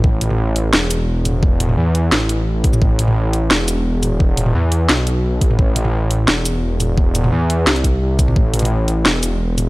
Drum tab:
HH |------x-----------x-----------x-----------x-----|------x-----------x-----------x-----------x-----|------x-----------x-----------x-----------x-----|------x-----------x-----------x-----------x-----|
SH |------------------------------x-----------x-----|---------------------------------------------x--|------------------------------x-----------x-----|------------------------------------------------|
SD |------------------------o-----------------------|------------------------o-----------------------|------------------------o-----------------------|------------------------o-----------------------|
T2 |------o--o--------------------------------o-----|------o--o-----------------------------------o--|------o--o--------------------------------o-----|------o--o-----------------------------------o--|
BD |o-----------------------------------------------|o-----------------------------------------o-----|o-----------------------------------------------|o-----------------------------------------o-----|

HH |------x-----------x-----------x-----------x-----|------x-----------x--------x--x-----------x-----|------x-x-x-------x-----------x-----------x-----|
SH |------------------------------x-----------x-----|------x-----------------------------------x-----|------------------------------x-----------x-----|
SD |------------------------o-----------------------|------------------------o-----------------------|------------------------o-----------------------|
T2 |------o--o--------------------------------o-----|------o--o-----------------------------------o--|------o--o--------------------------------o-----|
BD |o-----------------------------------------------|o-----------------------------o-----------o-----|o-----------------------------------------------|